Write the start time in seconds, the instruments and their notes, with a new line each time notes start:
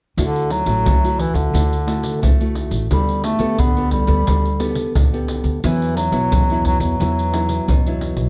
0.17 upright bass D2, nylon-string guitar D3 A3 E4 F#4, bass clarinet D3, pandeiro, shaker, surdo
0.36 pandeiro, shaker
0.50 bass clarinet F#3, pandeiro
0.66 upright bass A1, nylon-string guitar A3 E4 F#4, pandeiro, shaker
0.86 upright bass D2, nylon-string guitar A3, pandeiro, shaker, surdo
1.04 nylon-string guitar A3 E4 F#4, pandeiro, shaker
1.19 bass clarinet E3, pandeiro, shaker
1.34 upright bass D2, bass clarinet D3, pandeiro, shaker
1.54 upright bass D2, nylon-string guitar D3 A3 E4 F#4, pandeiro, shaker, surdo
1.73 pandeiro, shaker
1.87 nylon-string guitar A3 E4 F#4, pandeiro
2.03 pandeiro, shaker
2.22 upright bass D2, nylon-string guitar A3, pandeiro, shaker, surdo
2.40 nylon-string guitar A3 E4 F#4, pandeiro, shaker
2.55 pandeiro
2.71 upright bass A1, pandeiro, shaker
2.91 upright bass D2, nylon-string guitar D3 B3 G4 A4, bass clarinet G3, pandeiro, shaker, surdo
3.09 pandeiro, shaker
3.24 bass clarinet A3, pandeiro
3.39 upright bass D2, nylon-string guitar B3 G4 A4, pandeiro, shaker
3.58 upright bass D2, nylon-string guitar D3, bass clarinet B3, pandeiro, shaker, surdo
3.77 nylon-string guitar B3 G4 A4, pandeiro, shaker
3.91 bass clarinet G3, pandeiro, surdo
4.07 upright bass D2, nylon-string guitar B3 G4 A4, pandeiro, shaker
4.27 upright bass D2, nylon-string guitar D3 B3 G4 A4, pandeiro, shaker, surdo
4.46 pandeiro, shaker
4.59 nylon-string guitar B3 G4 A4, pandeiro, shaker
4.75 pandeiro, shaker
4.95 upright bass D2, nylon-string guitar D3, pandeiro, shaker, surdo
5.13 nylon-string guitar B3 G4 A4, pandeiro, shaker
5.28 pandeiro, shaker
5.44 upright bass D2, pandeiro, shaker
5.63 upright bass E2, bass clarinet E3, nylon-string guitar E3 F#3 B3 E4, pandeiro, shaker, surdo
5.82 pandeiro, shaker
5.96 bass clarinet F#3, pandeiro
6.12 upright bass B1, nylon-string guitar F#3 B3 E4, pandeiro, shaker
6.32 upright bass E2, nylon-string guitar B2, pandeiro, shaker, surdo
6.50 nylon-string guitar F#3 B3 E4, pandeiro, shaker
6.65 bass clarinet F#3, pandeiro, shaker, surdo
6.80 upright bass E2, bass clarinet F#3, pandeiro, shaker
7.00 upright bass E2, nylon-string guitar E3 F#3 B3 E4, pandeiro, shaker, surdo
7.19 pandeiro, shaker
7.33 nylon-string guitar F#3 B3 E4, pandeiro, shaker
7.49 pandeiro, shaker
7.68 upright bass E2, nylon-string guitar B2, pandeiro, shaker, surdo
7.87 nylon-string guitar F#3 B3 E4, pandeiro, shaker
8.01 pandeiro, shaker
8.17 upright bass B1, pandeiro, shaker